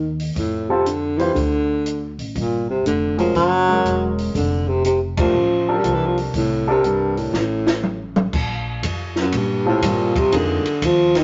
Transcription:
0.00 0.32 D#2 medium
0.00 0.15 D#3 loud
0.20 open hi-hat soft
0.36 1.32 F2 medium
0.36 0.67 A2 medium
0.36 kick soft
0.36 open hi-hat soft
0.69 0.87 C3 medium
0.69 0.84 G3 medium
0.69 0.84 C4 medium
0.69 0.85 F4 medium
0.69 0.85 A4 medium
0.85 1.19 D3 medium
0.85 closed hi-hat soft
1.18 1.34 E3 medium
1.18 1.34 G3 medium
1.18 1.34 C4 soft
1.18 1.34 F4 medium
1.18 1.34 C5 medium
1.18 open hi-hat soft
1.34 2.14 D2 medium
1.34 2.14 D3 medium
1.34 kick soft
1.34 open hi-hat soft
1.86 closed hi-hat soft
2.18 2.34 A1 medium
2.18 open hi-hat soft
2.35 2.82 G1 medium
2.35 2.67 A#2 medium
2.35 kick soft
2.35 open hi-hat soft
2.70 2.85 C3 medium
2.85 3.32 F1 medium
2.85 3.17 D3 medium
2.85 closed hi-hat soft
3.17 3.34 F3 medium
3.17 3.33 G#3 medium
3.17 3.33 C#4 medium
3.17 3.33 F#4 medium
3.17 3.34 A#4 medium
3.17 open hi-hat soft
3.35 3.81 F#1 medium
3.35 4.14 F#3 loud
3.35 kick soft
3.35 open hi-hat soft
3.68 4.31 G#3 medium
3.68 4.31 C#4 medium
3.68 4.32 F#4 medium
3.68 4.32 A#4 medium
3.85 4.31 E1 medium
3.85 closed hi-hat soft
4.18 open hi-hat soft
4.35 5.30 F1 medium
4.35 4.70 D3 medium
4.35 kick soft
4.35 open hi-hat soft
4.68 4.84 C3 medium
4.84 5.00 C3 medium
4.84 closed hi-hat medium
5.17 5.80 F3 medium
5.17 5.32 A3 medium
5.17 5.33 D4 medium
5.17 5.33 G4 soft
5.17 5.33 A#4 medium
5.17 kick medium
5.17 ride medium
5.34 5.81 A1 medium
5.69 6.31 D4 medium
5.69 6.32 G4 medium
5.69 6.31 A4 medium
5.69 6.32 A#4 medium
5.78 5.85 G3 medium
5.84 6.31 C2 medium
5.84 5.95 F3 medium
5.84 closed hi-hat soft
5.93 6.07 E3 medium
6.06 6.18 F3 medium
6.17 open hi-hat soft
6.34 7.30 C2 medium
6.34 6.66 A2 medium
6.34 kick soft
6.34 open hi-hat soft
6.68 6.87 C3 loud
6.68 7.31 D4 medium
6.68 7.31 G4 medium
6.68 7.31 A4 medium
6.68 7.31 A#4 medium
6.84 7.20 G2 medium
6.84 closed hi-hat soft
7.17 8.17 A2 medium
7.17 open hi-hat soft
7.33 8.29 A1 medium
7.33 snare soft
7.67 snare medium
7.83 mid tom medium
8.16 mid tom medium
8.33 8.82 A#1 medium
8.33 kick medium
8.33 crash medium
8.83 9.31 F2 medium
8.83 kick soft
8.83 hi-hat pedal soft
8.83 ride medium
9.16 9.39 F#2 medium
9.16 snare soft
9.32 9.81 A#2 medium
9.32 kick soft
9.32 ride medium
9.37 9.67 G2 medium
9.66 9.88 A2 medium
9.66 10.29 G3 medium
9.66 10.29 C4 medium
9.66 10.29 F4 medium
9.66 10.29 A4 medium
9.82 10.31 G2 medium
9.82 kick soft
9.82 hi-hat pedal medium
9.82 ride medium
9.86 10.20 A#2 medium
10.16 10.37 C3 medium
10.16 kick medium
10.16 ride soft
10.32 10.63 F2 medium
10.32 10.86 D3 medium
10.32 10.62 F3 medium
10.32 10.62 A#3 soft
10.32 10.62 D#4 soft
10.32 10.63 G#4 medium
10.32 kick soft
10.32 ride medium
10.65 ride soft
10.82 11.24 D#2 medium
10.82 11.19 F3 loud
10.82 kick soft
10.82 hi-hat pedal medium
10.82 ride medium
11.15 11.24 D#3 medium
11.15 snare soft
11.15 ride soft

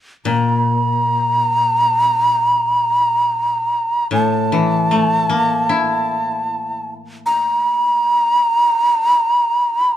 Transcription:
0.25 3.63 A#2 soft
0.25 4.07 A#5 medium
4.11 7.49 A2 soft
4.11 6.90 A5 medium
4.52 7.64 E3 soft
4.91 8.03 A3 soft
5.29 8.41 A#3 soft
5.69 8.80 E4 soft
7.26 9.97 A#5 medium

